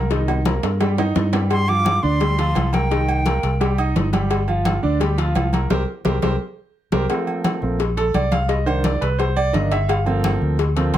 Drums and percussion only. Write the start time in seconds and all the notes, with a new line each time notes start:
0.11 cowbell, high bongo, high conga
0.28 high bongo, high conga, low agogo
0.45 cowbell, high bongo, high conga, low agogo
0.63 cowbell, high conga, high timbale
0.80 cowbell, high conga, high timbale, low agogo
0.98 low bongo, high conga, low timbale, low agogo
1.15 cowbell, low bongo, high conga, low timbale
1.33 cowbell, low bongo, low timbale, low agogo
1.50 cowbell, high conga, low agogo
1.68 high conga, low agogo
1.85 cowbell, high conga, low agogo
2.03 high conga
2.20 cowbell, high conga, low agogo
2.39 cowbell, high conga
2.55 cowbell, high conga, low timbale, low agogo
2.73 cowbell, high conga, low agogo
2.91 cowbell, high conga
3.08 high conga, low agogo
3.26 cowbell, high conga, low agogo
3.43 cowbell, high conga
3.61 cowbell, high conga, low agogo
3.78 high conga, low agogo
3.96 cowbell, high conga, low timbale
4.13 cowbell, high conga, low agogo
4.30 cowbell, high conga, low agogo
4.48 high conga, low agogo
4.65 cowbell, high conga, low agogo
4.83 high conga
5.01 cowbell, high conga, low agogo
5.18 cowbell, high conga
5.35 cowbell, high conga, low timbale, low agogo
5.53 cowbell, high conga, low agogo
5.70 cowbell, high conga, high timbale
6.05 cowbell, high conga, high timbale
6.22 cowbell, high conga, high timbale
6.92 cowbell, high conga, high timbale
7.10 cowbell, high conga, low agogo
7.27 high conga, low agogo
7.44 cowbell, high conga, low agogo
7.62 high conga
7.79 cowbell, high conga, low agogo
7.97 cowbell, high conga
8.14 cowbell, high conga, low agogo
8.32 cowbell, high conga, low agogo
8.49 cowbell, high conga
8.67 high conga, low agogo
8.84 cowbell, high conga, low agogo
9.02 cowbell, high conga
9.19 cowbell, high conga, low agogo
9.36 high conga, low agogo
9.54 cowbell, high conga
9.72 cowbell, low agogo
9.89 cowbell, high conga, low agogo
10.06 high conga, low agogo
10.24 cowbell, high conga, low agogo
10.42 high conga
10.59 cowbell, high conga, low agogo
10.77 cowbell, high conga
10.94 cowbell, high conga, low timbale, low agogo